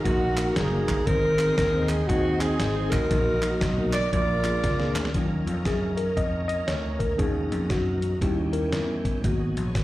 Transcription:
Already playing: F#3 A#3 D#4 A#4
0.04 A#1 A#3 D#4 F#4 A#4, kick, closed hi-hat
0.36 A#3 D#4 F#4 A#4, clap, closed hi-hat
0.55 F#1 D#4 G#4, snare, closed hi-hat
0.71 A#3 D#4 F#4 A#4
0.88 G1, kick, clap, closed hi-hat
1.05 G#1 G#2 G#3 C4 D#4 G#4 A#4 C5, kick, closed hi-hat
1.39 C4 D#4 G#4 C5, clap, closed hi-hat
1.56 D#2 A#4, kick, snare, closed hi-hat
1.73 C4 D#4 G#4 C5
1.89 G#4, clap, closed hi-hat
2.08 D#2 C4 D#4 F#4 G#4 D#5, kick, closed hi-hat
2.40 C4 D#4 G#4 C5, clap, closed hi-hat
2.60 G#1, snare, closed hi-hat
2.75 C4 D#4 G#4 C5
2.91 A1 D#4 F#4 A#4, kick, clap, closed hi-hat
3.10 A#1 A#2 F#3 A#3 D#4 F#4 A4 A#4, kick, closed hi-hat
3.17 A#4
3.42 A#3 D#4 F#4 A#4, clap, closed hi-hat
3.61 B1, kick, snare, closed hi-hat
3.77 A#3 D#4 F#4 A#4
3.93 D5, snare, clap, closed hi-hat
4.12 A#1 A#2 F3 A#3 D4 F4 A#4 D5, kick, closed hi-hat
4.44 A#3 D4 F4 G#4, clap, closed hi-hat
4.64 C#2, kick, snare, closed hi-hat
4.79 A#3 D4 F4 G#4, snare
4.96 D2, snare, clap, closed hi-hat
5.05 snare
5.14 D#2 F#3 A#3 C#4 D#4 F4 G#4, kick, closed hi-hat
5.21 A#4
5.47 F2, closed hi-hat
5.65 F#2 G#4, kick, snare, closed hi-hat
5.97 A#4, closed hi-hat
6.17 F2 D#5, kick, closed hi-hat
6.48 D#5, closed hi-hat
6.67 D2 C#5, snare, closed hi-hat
6.99 A#4, kick, closed hi-hat
7.17 D#2 B2 F#3 A#3 C#4 D#4 G#4 A#4, kick, closed hi-hat
7.51 F2, closed hi-hat
7.70 F#2 F#4, kick, snare, closed hi-hat
8.02 closed hi-hat
8.21 D#2 D#3 E3 G3 C#4 E4 G4, kick, closed hi-hat
8.28 G4
8.53 A#4, closed hi-hat
8.73 E2, snare, closed hi-hat
9.05 kick, closed hi-hat
9.23 G#1 F#3 A#3 B3 D#4 F#4 G#4, kick, closed hi-hat
9.29 B2
9.56 A#1 A#4 D#5, closed hi-hat
9.65 G#4 C#5
9.75 G#1 F#4 B4, kick, snare, closed hi-hat

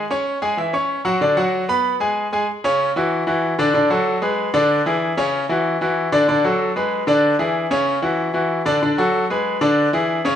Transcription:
0.11 C#4 C#5 C#6
0.42 G#3 G#4 G#5
0.57 E3 E4 E5
0.73 C#4 C#5 C#6
1.05 F#3 F#4 F#5
1.21 D3 D4 D5
1.37 F#3 F#4 F#5
1.69 B3 B4 B5
2.00 G#3 G#4 G#5
2.33 G#3 G#4 G#5
2.64 C#3 C#4 C#5
2.96 E3 E4 F#4
3.27 E3 E4 F#4
3.59 D3 D4 D5
3.74 D3 D4 D5
3.90 F#3 F#4 A4
4.22 G#3 G#4 B4
4.54 D3 D4 D5
4.86 E3 E4 G#4
5.17 C#3 C#4 C#5
5.49 E3 E4 F#4
5.81 E3 E4 F#4
6.12 D3 D4 D5
6.28 D3 D4 D5
6.44 F#3 F#4 A4
6.76 G#3 G#4 B4
7.07 D3 D4 D5
7.39 E3 E4 G#4
7.71 C#3 C#4 C#5
8.02 E3 E4 F#4
8.34 E3 E4 F#4
8.66 D3 D4 D5
8.82 D3 D4 D5
8.98 F#3 F#4 A4
9.30 G#3 G#4 B4
9.61 D3 D4 D5
9.93 E3 E4 G#4
10.25 C#3 C#4 C#5

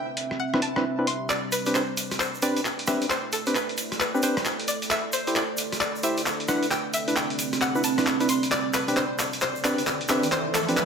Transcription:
Already playing: C4 D4 G4 A4 E5 G5
0.02 D5
0.17 closed hi-hat
0.31 cross-stick
0.40 F#5
0.54 C4 D4 E4 B4, cross-stick
0.62 A5, closed hi-hat
0.76 C4 D4 E4 B4, cross-stick
0.99 C4 D4 E4 B4
1.07 C6, closed hi-hat
1.29 A4 D5, clap, shaker
1.49 B4 E5, closed hi-hat, shaker
1.66 C4 D4 G4 B4, closed hi-hat, shaker
1.74 C5, clap, shaker
1.97 closed hi-hat, shaker
2.11 cross-stick, closed hi-hat, shaker
2.20 C5 B5, clap, shaker
2.34 shaker
2.42 C4 D4 G4 B4 D5, closed hi-hat, shaker
2.57 closed hi-hat, shaker
2.65 clap, shaker
2.79 closed hi-hat
2.87 C4 D4 G4 B4 E5, cross-stick, closed hi-hat, shaker
3.02 closed hi-hat, shaker
3.10 C5, clap, shaker
3.32 A4, closed hi-hat, shaker
3.46 C4 D4 G4 B4, closed hi-hat, shaker
3.55 B4, clap, shaker
3.69 closed hi-hat
3.77 closed hi-hat, shaker
3.92 cross-stick, closed hi-hat, shaker
4.00 B4, clap, shaker
4.14 C4 D4 G4 B4, shaker
4.23 C4 D4 G4 B4 C5, closed hi-hat, shaker
4.37 cross-stick, closed hi-hat, shaker
4.45 clap, shaker
4.60 closed hi-hat
4.68 D4 D5, closed hi-hat, shaker
4.82 closed hi-hat, shaker
4.91 E5, clap, shaker
5.13 C5, closed hi-hat, shaker
5.27 E4 G4 C5, closed hi-hat, shaker
5.35 D5, clap, shaker
5.57 closed hi-hat, shaker
5.72 cross-stick, closed hi-hat, shaker
5.81 D5, clap, shaker
5.96 shaker
6.03 E4 G4 C5 E5, closed hi-hat, shaker
6.17 closed hi-hat, shaker
6.26 clap, shaker
6.40 closed hi-hat
6.48 C4 D4 E4 B4 F#5, cross-stick, closed hi-hat, shaker
6.63 G4, closed hi-hat, shaker
6.71 G5, clap, shaker
6.94 E5, closed hi-hat, shaker
7.08 D4 E4 B4, closed hi-hat, shaker
7.16 G5, clap, shaker
7.30 closed hi-hat
7.39 D5, closed hi-hat, shaker
7.53 cross-stick, closed hi-hat, shaker
7.61 F#5, clap, shaker
7.75 D4 E4 B4, shaker
7.84 A5, closed hi-hat, shaker
7.98 D4 E4 B4, cross-stick, closed hi-hat, shaker
8.06 clap, shaker
8.20 D4 E4 B4, closed hi-hat, shaker
8.29 C6, closed hi-hat, shaker
8.43 closed hi-hat, shaker
8.51 A4 D5, clap, riser, shaker
8.73 B4, clap, closed hi-hat, shaker
8.80 E5
8.88 C4 D4 G4 B4, closed hi-hat, shaker
8.96 C5, clap, shaker
9.19 clap, closed hi-hat, shaker
9.33 closed hi-hat, shaker
9.41 C5, clap, shaker
9.55 shaker
9.60 B5
9.64 C4 D4 G4 B4 D5, clap, closed hi-hat, shaker
9.78 closed hi-hat, shaker
9.86 clap, shaker
10.01 closed hi-hat
10.08 C4 D4 G4 B4 E5, clap, closed hi-hat, shaker
10.23 closed hi-hat, shaker
10.32 C5, clap, shaker
10.54 A4, clap, closed hi-hat, shaker
10.69 C4 D4 G4 B4, closed hi-hat, shaker
10.77 B4, clap, shaker

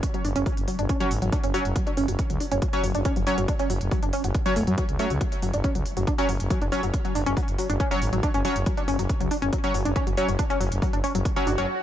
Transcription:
0.03 kick, closed hi-hat
0.14 F#3, closed hi-hat
0.25 F#1 D4, open hi-hat
0.36 F#1 C#4, closed hi-hat
0.46 F#3, kick, open hi-hat
0.57 F#1, closed hi-hat
0.68 F#3, open hi-hat
0.79 F#1 D4, closed hi-hat
0.89 C#4, kick, closed hi-hat
1.00 F#3 C#4 C#5, closed hi-hat
1.11 G#1, open hi-hat
1.22 G#1 F#3, closed hi-hat
1.32 D4, kick, closed hi-hat
1.44 F#1 C#4, closed hi-hat
1.54 F#3 C#4 C#5, open hi-hat
1.65 F#1, closed hi-hat
1.76 F#3, kick, closed hi-hat
1.87 D4, closed hi-hat
1.97 F#1 C#4, open hi-hat
2.08 F#1 F#3, closed hi-hat
2.19 kick, closed hi-hat
2.30 C#2 F#3, closed hi-hat
2.40 D4, open hi-hat
2.52 F#1 C#4, closed hi-hat
2.62 F#3, kick, closed hi-hat
2.73 F#3 C#4 C#5, closed hi-hat
2.84 F#1 F#3, open hi-hat
2.95 F#1 D4, closed hi-hat
3.05 C#4, kick, closed hi-hat
3.16 F#1 F#3, closed hi-hat
3.27 F#3 C#4 C#5, open hi-hat
3.38 F#1 F#3, closed hi-hat
3.48 D4, kick, closed hi-hat
3.59 C#4, closed hi-hat
3.70 F#1 F#3, open hi-hat
3.81 F#1, closed hi-hat
3.91 F#3, kick, open hi-hat
4.03 F#1 D4, closed hi-hat
4.13 C#4, open hi-hat
4.24 F#1 F#3, closed hi-hat
4.35 kick, closed hi-hat
4.46 F#3 C#4 C#5, closed hi-hat
4.56 E1 A3, open hi-hat
4.67 F#2 F#3, closed hi-hat
4.78 F#3, kick, closed hi-hat
4.89 C#2, closed hi-hat
4.99 F#3 A3 C#4 C#5, open hi-hat
5.10 C#2 F#3, closed hi-hat
5.21 F#3, kick, closed hi-hat
5.32 closed hi-hat
5.42 F#1 F#3, open hi-hat
5.54 F#1 D4, closed hi-hat
5.64 C#4, kick, closed hi-hat
5.75 C#2 F#3, closed hi-hat
5.86 open hi-hat
5.97 F#1 F#3, closed hi-hat
6.07 D4, kick, closed hi-hat
6.18 F#3 C#4 C#5, closed hi-hat
6.29 F#1 F#3, open hi-hat
6.40 F#1, closed hi-hat
6.50 F#3, kick, closed hi-hat
6.62 F#1 D4, closed hi-hat
6.72 F#3 C#4 C#5, open hi-hat
6.83 F#1 F#3, closed hi-hat
6.94 kick, closed hi-hat
7.05 F#3, closed hi-hat
7.15 F#1 D4, open hi-hat
7.26 F#1 C#4, closed hi-hat
7.37 F#3, kick, open hi-hat
7.48 F#1, closed hi-hat
7.58 F#3, open hi-hat
7.70 F#1 D4, closed hi-hat
7.80 C#4, kick, closed hi-hat
7.91 F#3 C#4 C#5, closed hi-hat
8.02 G#1, open hi-hat
8.13 G#1 F#3, closed hi-hat
8.23 D4, kick, closed hi-hat
8.34 F#1 C#4, closed hi-hat
8.45 F#3 C#4 C#5, open hi-hat
8.56 F#1, closed hi-hat
8.66 F#3, kick, closed hi-hat
8.77 D4, closed hi-hat
8.88 F#1 C#4, open hi-hat
8.99 F#1 F#3, closed hi-hat
9.09 kick, closed hi-hat
9.21 C#2 F#3, closed hi-hat
9.31 D4, open hi-hat
9.42 F#1 C#4, closed hi-hat
9.53 F#3, kick, closed hi-hat
9.64 F#3 C#4 C#5, closed hi-hat
9.74 F#1 F#3, open hi-hat
9.85 F#1 D4, closed hi-hat
9.96 C#4, kick, closed hi-hat
10.07 F#1 F#3, closed hi-hat
10.17 F#3 C#4 C#5, open hi-hat
10.28 F#1 F#3, closed hi-hat
10.39 D4, kick, closed hi-hat
10.50 C#4, closed hi-hat
10.60 F#1 F#3, open hi-hat
10.72 F#1, closed hi-hat
10.82 F#3, kick, open hi-hat
10.93 F#1 D4, closed hi-hat
11.04 C#4, open hi-hat
11.15 F#1 F#3, closed hi-hat
11.25 kick, closed hi-hat, swell
11.36 F#3 C#4 C#5, closed hi-hat
11.47 F#1 D4, open hi-hat
11.58 F#1 F#3 C#4 C#5, closed hi-hat

